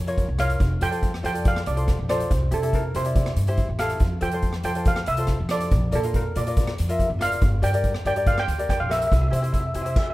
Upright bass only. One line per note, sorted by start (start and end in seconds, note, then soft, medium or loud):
0.00 0.22 F2 medium
0.28 0.53 C2 medium
0.60 0.77 F1 medium
0.81 1.15 F2 medium
1.24 1.57 F2 medium
1.67 1.92 C2 medium
1.99 2.24 A#1 medium
2.31 2.47 C2 medium
2.52 2.85 C3 medium
2.95 3.28 C3 medium
3.36 3.62 G2 medium
3.69 3.94 A1 medium
4.01 4.17 F2 medium
4.22 4.55 F3 medium
4.64 4.97 F3 medium
5.08 5.33 C2 medium
5.41 5.65 F2 medium
5.72 5.88 A#1 medium
5.93 6.26 A#2 medium
6.36 6.69 A#2 medium
6.79 7.04 F2 medium
7.10 7.34 G1 medium
7.42 7.58 G1 medium
7.62 7.96 G2 medium
8.05 8.38 G2 medium
8.48 8.73 D2 medium
8.81 9.05 A#1 medium
9.12 9.28 C2 medium
9.33 9.66 C3 medium
9.75 9.91 C3 medium